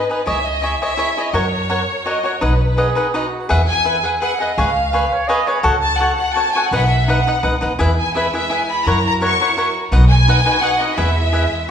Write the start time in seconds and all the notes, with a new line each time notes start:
Already playing: B4
0.09 D#4 G#4 B4 D#5
0.26 C#2 E4 G#4 C#5 D#5 E5
0.46 D#5
0.62 E4 G#4 C#5 D#5 E5
0.81 E4 G#4 C#5 D#5 E5
0.97 E4 G#4 C#5 D#5
1.17 E4 G#4 C#5 D#5
1.33 F#2 F#4 A#4 C#5 F#5
1.69 F#4 A#4 C#5 F#5
2.06 F#4 A#4 C#5 D#5 F#5
2.24 F#4 A#4 C#5 F#5
2.41 B1 D#4 B4 D#5 F#5
2.77 D#4 G#4 B4 D#5 F#5
2.95 D#4 B4 D#5 F#5
3.14 D#4 F#4 B4 D#5 F#5
3.49 E2 G#4 B4 E5 F#5
3.68 G#5
3.84 G#4 B4 E5 F#5
4.03 G#4 B4 E5 F#5
4.21 G#4 B4 E5 F#5
4.40 G#4 B4 D#5 E5 F#5
4.58 C#2 G#4 B4 C#5 F5
4.93 G#4 B4 C#5 F5
5.13 C#5
5.28 G#4 B4 C#5 D#5 F5
5.47 G#4 B4 C#5 F5
5.63 C#2 F#4 A4 C#5 F#5
5.83 A5
5.99 F#4 A4 C#5 F#5
6.17 F#5
6.34 F#4 A4 C#5 F#5 A5
6.53 F#4 A4 C#5 G#5
6.57 F#5
6.69 B1 D#4 B4 F#5
6.73 D#5 E5 F#5
6.79 F#5
6.87 E5
7.06 D#4 B4 D#5 F#5
7.27 D#4 B4 D#5 F#5
7.43 C#2 D#4 B4 D#5 F#5
7.61 D#2 D#4 B4 D#5 F#5
7.79 E2 G#3 E4 G#4 B4 E5
7.99 G#5
8.15 E4 G#4 B4 E5
8.33 E4 G#4 B4 E5
8.50 E4 G#4 B4 E5 G#5
8.71 B5
8.86 F#2 E4 F#4 A#4 C#5 F#5 A#5
9.06 A#5
9.21 E4 A#4 C#5 F#5 C#6
9.40 E4 A#4 C#5 F#5
9.57 E4 A#4 C#5 F#5
9.92 B1 D#4 F#4 B4 D#5 F#5
10.11 G#5
10.28 D#4 B4 D#5 F#5
10.46 D#4 B4 D#5 F#5
10.62 D#4 B4 D#5 F#5
10.80 D#4 B4 D#5 F#5
10.97 E2 G#3 E4 G#4 B4 E5
11.33 E4 G#4 B4 E5